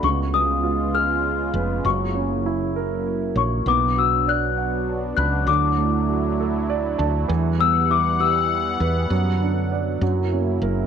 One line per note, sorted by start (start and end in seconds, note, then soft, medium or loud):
0.00 1.50 C#2 medium
0.00 3.63 C#3 medium
0.00 1.83 G#3 medium
0.00 1.81 B3 medium
0.00 1.83 F4 medium
0.04 1.81 C#3 medium
0.04 0.18 C#6 medium
0.34 1.51 G#3 soft
0.34 0.96 D#6 medium
0.63 1.81 F4 soft
0.94 1.82 G#4 soft
0.94 1.88 F6 medium
1.54 1.83 F1 medium
1.54 1.84 B4 soft
1.85 3.32 F#1 medium
1.85 3.62 F#3 soft
1.85 3.65 F#3 medium
1.85 3.65 A#3 medium
1.85 3.65 E4 medium
1.85 3.02 C#6 medium
2.15 3.33 C#4 soft
2.46 3.63 E4 soft
2.76 3.64 A#4 soft
3.36 3.64 A#1 medium
3.36 3.65 C#5 soft
3.36 3.68 C#6 medium
3.65 5.13 B1 medium
3.65 5.46 F#3 medium
3.65 5.45 B3 medium
3.65 5.44 B3 medium
3.65 7.25 D4 medium
3.65 5.46 F#4 medium
3.65 3.98 D6 medium
3.97 5.14 F#4 soft
3.97 4.29 E6 medium
4.27 5.45 D5 soft
4.27 4.84 F#6 medium
4.58 5.45 F#5 soft
5.17 5.46 C#2 medium
5.17 5.47 B5 soft
5.17 5.48 F#6 medium
5.47 6.94 D2 medium
5.47 7.26 D3 soft
5.47 7.28 F#3 medium
5.47 7.28 A3 medium
5.47 7.28 E4 medium
5.47 6.95 D6 medium
5.78 6.95 A3 soft
6.09 7.26 F#4 soft
6.40 7.27 A4 soft
6.70 6.97 D5 medium
6.99 7.28 D2 medium
6.99 7.28 D5 soft
6.99 7.27 A5 medium
7.28 8.77 E2 medium
7.28 9.08 E3 medium
7.28 9.06 E3 medium
7.28 9.08 G3 medium
7.28 9.98 B3 medium
7.28 9.98 F#5 medium
7.59 8.77 B3 soft
7.59 7.88 E6 medium
7.90 9.07 E4 soft
7.90 8.22 D6 medium
8.20 9.08 G4 soft
8.20 10.58 E6 medium
8.80 9.09 E2 medium
8.80 9.10 B4 soft
9.10 9.97 F#2 medium
9.10 10.00 D3 medium
9.10 10.87 F#3 medium
9.10 9.99 F#3 medium
9.41 10.00 D4 soft
9.72 10.01 D5 soft
10.01 10.58 F#2 medium
10.01 10.87 C#3 medium
10.01 10.87 F#3 soft
10.01 10.87 A#3 medium
10.01 10.87 E4 medium
10.33 10.87 C#4 soft
10.62 10.87 F#1 medium
10.62 10.87 A#4 soft